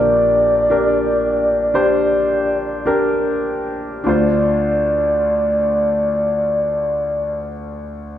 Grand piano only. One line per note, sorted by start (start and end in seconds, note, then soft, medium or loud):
0.00 4.02 A#1 soft
0.00 4.03 A#2 soft
0.00 0.65 D4 soft
0.00 0.65 G4 soft
0.00 0.66 A#4 soft
0.70 1.70 D4 soft
0.70 1.70 G4 soft
0.70 1.70 A#4 soft
1.74 2.80 D4 soft
1.74 2.81 G4 soft
1.74 2.81 C5 medium
2.86 4.00 D4 soft
2.86 4.00 G4 soft
2.86 4.00 A#4 medium
4.04 7.49 D2 soft
4.04 7.47 D4 soft
4.04 7.49 F4 soft
4.08 7.51 C5 soft